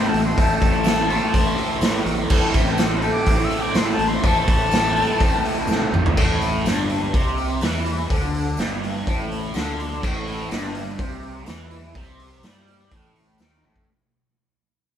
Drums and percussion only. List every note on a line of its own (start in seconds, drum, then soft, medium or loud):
0.14 open hi-hat medium
0.38 kick loud
0.38 open hi-hat medium
0.62 kick loud
0.62 open hi-hat medium
0.84 snare loud
0.84 open hi-hat medium
0.84 tambourine loud
1.10 open hi-hat medium
1.34 kick medium
1.34 open hi-hat medium
1.58 open hi-hat medium
1.81 snare loud
1.81 open hi-hat medium
1.81 tambourine loud
2.06 open hi-hat medium
2.30 kick loud
2.30 crash loud
2.54 kick loud
2.54 open hi-hat medium
2.78 snare loud
2.78 open hi-hat medium
2.78 tambourine loud
3.02 open hi-hat medium
3.26 kick medium
3.26 open hi-hat medium
3.51 open hi-hat soft
3.74 snare loud
3.74 open hi-hat medium
3.74 tambourine medium
3.99 open hi-hat medium
4.24 kick loud
4.24 open hi-hat medium
4.48 kick loud
4.48 open hi-hat medium
4.71 snare loud
4.71 open hi-hat medium
4.71 tambourine medium
4.97 open hi-hat medium
5.20 kick medium
5.20 open hi-hat medium
5.45 open hi-hat medium
5.67 snare medium
5.67 tambourine medium
5.82 high tom medium
5.94 mid tom loud
6.06 floor tom loud
6.17 kick loud
6.17 crash loud
6.41 open hi-hat medium
6.66 snare loud
6.66 open hi-hat medium
6.66 tambourine loud
6.90 open hi-hat medium
7.14 kick loud
7.14 open hi-hat medium
7.38 open hi-hat medium
7.61 snare loud
7.61 open hi-hat medium
7.61 tambourine medium
7.86 open hi-hat medium
8.10 kick loud
8.10 open hi-hat medium
8.35 open hi-hat medium
8.57 snare loud
8.57 open hi-hat medium
8.57 tambourine loud
8.84 open hi-hat medium
9.07 kick loud
9.07 open hi-hat medium
9.32 open hi-hat medium
9.54 snare loud
9.54 open hi-hat medium
9.54 tambourine medium
9.80 open hi-hat medium
10.03 kick loud
10.03 crash loud
10.27 open hi-hat medium
10.51 snare loud
10.51 open hi-hat medium
10.51 tambourine medium
10.75 open hi-hat medium
10.99 kick loud
10.99 open hi-hat medium
11.23 open hi-hat soft
11.46 snare loud
11.46 open hi-hat medium
11.46 tambourine medium
11.71 open hi-hat medium
11.95 kick loud
11.95 open hi-hat medium
12.20 open hi-hat medium
12.43 snare medium
12.43 open hi-hat medium
12.43 tambourine loud
12.67 open hi-hat medium
12.92 kick loud
12.92 open hi-hat medium
13.16 open hi-hat medium
13.38 snare loud
13.38 open hi-hat medium
13.38 tambourine medium
13.64 high tom medium
13.76 kick medium